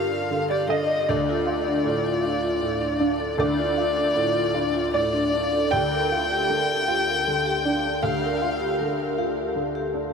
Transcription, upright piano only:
0, 0, Header, 1, 2, 480
1, 0, Start_track
1, 0, Key_signature, -2, "minor"
1, 0, Tempo, 772201
1, 669, Time_signature, 3, 2, 24, 8
1, 6297, End_track
2, 0, Start_track
2, 0, Title_t, "Upright piano"
2, 0, Program_c, 0, 0
2, 0, Control_c, 0, 64, 127
2, 0, Note_on_c, 0, 43, 80
2, 0, Note_on_c, 0, 50, 54
2, 0, Note_on_c, 0, 62, 62
2, 0, Note_on_c, 0, 65, 61
2, 0, Note_on_c, 0, 77, 96
2, 84, Note_off_c, 0, 50, 0
2, 190, Note_on_c, 0, 50, 59
2, 285, Note_off_c, 0, 77, 0
2, 310, Note_on_c, 0, 74, 82
2, 333, Note_off_c, 0, 65, 0
2, 415, Note_off_c, 0, 50, 0
2, 421, Note_off_c, 0, 74, 0
2, 425, Note_on_c, 0, 50, 57
2, 435, Note_on_c, 0, 75, 91
2, 640, Note_off_c, 0, 43, 0
2, 656, Note_off_c, 0, 75, 0
2, 668, Note_off_c, 0, 50, 0
2, 676, Note_on_c, 0, 38, 70
2, 678, Note_on_c, 0, 74, 76
2, 681, Control_c, 0, 64, 0
2, 685, Note_off_c, 0, 62, 0
2, 779, Control_c, 0, 64, 127
2, 911, Note_on_c, 0, 65, 58
2, 1144, Note_on_c, 0, 45, 59
2, 1295, Note_off_c, 0, 65, 0
2, 1386, Note_on_c, 0, 65, 63
2, 1530, Note_off_c, 0, 45, 0
2, 1623, Note_on_c, 0, 45, 55
2, 1770, Note_off_c, 0, 65, 0
2, 1863, Note_on_c, 0, 62, 64
2, 2008, Note_off_c, 0, 45, 0
2, 2086, Note_off_c, 0, 38, 0
2, 2087, Note_off_c, 0, 74, 0
2, 2102, Note_on_c, 0, 38, 80
2, 2111, Note_on_c, 0, 74, 103
2, 2119, Control_c, 0, 64, 0
2, 2216, Control_c, 0, 64, 127
2, 2248, Note_off_c, 0, 62, 0
2, 2345, Note_on_c, 0, 65, 62
2, 2585, Note_on_c, 0, 45, 62
2, 2730, Note_off_c, 0, 65, 0
2, 2824, Note_on_c, 0, 65, 64
2, 2969, Note_off_c, 0, 45, 0
2, 3043, Note_off_c, 0, 74, 0
2, 3069, Note_on_c, 0, 45, 60
2, 3070, Note_on_c, 0, 74, 97
2, 3209, Note_off_c, 0, 65, 0
2, 3314, Note_on_c, 0, 62, 61
2, 3457, Note_off_c, 0, 45, 0
2, 3525, Note_off_c, 0, 38, 0
2, 3531, Note_off_c, 0, 74, 0
2, 3549, Note_on_c, 0, 79, 111
2, 3556, Note_off_c, 0, 62, 0
2, 3560, Note_on_c, 0, 38, 76
2, 3564, Control_c, 0, 64, 0
2, 3683, Control_c, 0, 64, 127
2, 3801, Note_on_c, 0, 65, 54
2, 4035, Note_on_c, 0, 50, 56
2, 4180, Note_off_c, 0, 65, 0
2, 4275, Note_on_c, 0, 65, 62
2, 4416, Note_off_c, 0, 50, 0
2, 4520, Note_on_c, 0, 50, 59
2, 4654, Note_off_c, 0, 65, 0
2, 4756, Note_on_c, 0, 62, 58
2, 4896, Note_off_c, 0, 50, 0
2, 4959, Note_off_c, 0, 79, 0
2, 4965, Note_off_c, 0, 38, 0
2, 4989, Note_on_c, 0, 77, 88
2, 4991, Note_on_c, 0, 38, 71
2, 4998, Control_c, 0, 64, 0
2, 5082, Control_c, 0, 64, 127
2, 5133, Note_off_c, 0, 62, 0
2, 5231, Note_on_c, 0, 65, 56
2, 5472, Note_on_c, 0, 50, 50
2, 5608, Note_off_c, 0, 65, 0
2, 5676, Note_off_c, 0, 77, 0
2, 5706, Note_on_c, 0, 65, 50
2, 5850, Note_off_c, 0, 50, 0
2, 5936, Note_on_c, 0, 50, 48
2, 6088, Note_off_c, 0, 65, 0
2, 6177, Note_on_c, 0, 62, 47
2, 6297, Note_off_c, 0, 38, 0
2, 6297, Note_off_c, 0, 50, 0
2, 6297, Note_off_c, 0, 62, 0
2, 6297, End_track
0, 0, End_of_file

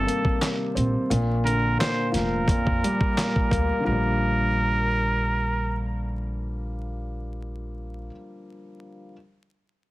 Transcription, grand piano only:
0, 0, Header, 1, 2, 480
1, 0, Start_track
1, 0, Key_signature, -2, "major"
1, 0, Tempo, 689655
1, 766, Time_signature, 4, 2, 24, 8
1, 6896, End_track
2, 0, Start_track
2, 0, Title_t, "Grand piano"
2, 0, Program_c, 0, 0
2, 0, Control_c, 0, 64, 127
2, 0, Note_on_c, 0, 48, 82
2, 0, Note_on_c, 0, 51, 76
2, 0, Note_on_c, 0, 55, 74
2, 49, Note_on_c, 0, 58, 85
2, 279, Note_off_c, 0, 48, 0
2, 283, Note_off_c, 0, 51, 0
2, 290, Note_on_c, 0, 48, 78
2, 524, Note_on_c, 0, 60, 83
2, 764, Note_off_c, 0, 55, 0
2, 765, Note_off_c, 0, 60, 0
2, 766, Note_on_c, 0, 46, 97
2, 768, Note_off_c, 0, 48, 0
2, 768, Note_off_c, 0, 58, 0
2, 777, Control_c, 0, 64, 0
2, 890, Control_c, 0, 64, 127
2, 1003, Note_on_c, 0, 50, 74
2, 1234, Note_off_c, 0, 46, 0
2, 1244, Note_on_c, 0, 46, 77
2, 1474, Note_on_c, 0, 53, 79
2, 1727, Note_off_c, 0, 46, 0
2, 1738, Note_on_c, 0, 46, 87
2, 1976, Note_on_c, 0, 55, 79
2, 2203, Note_off_c, 0, 46, 0
2, 2205, Note_off_c, 0, 50, 0
2, 2214, Note_on_c, 0, 46, 78
2, 2441, Note_on_c, 0, 58, 87
2, 2646, Note_on_c, 0, 50, 77
2, 2663, Note_off_c, 0, 53, 0
2, 2673, Note_on_c, 0, 53, 74
2, 2684, Note_off_c, 0, 58, 0
2, 2690, Note_off_c, 0, 46, 0
2, 2691, Note_off_c, 0, 55, 0
2, 2694, Control_c, 0, 64, 0
2, 2702, Note_on_c, 0, 55, 73
2, 2729, Note_on_c, 0, 58, 88
2, 2836, Control_c, 0, 64, 127
2, 5602, Note_off_c, 0, 50, 0
2, 5616, Note_off_c, 0, 53, 0
2, 5630, Note_off_c, 0, 55, 0
2, 5644, Note_off_c, 0, 58, 0
2, 6353, Control_c, 0, 64, 0
2, 6896, End_track
0, 0, End_of_file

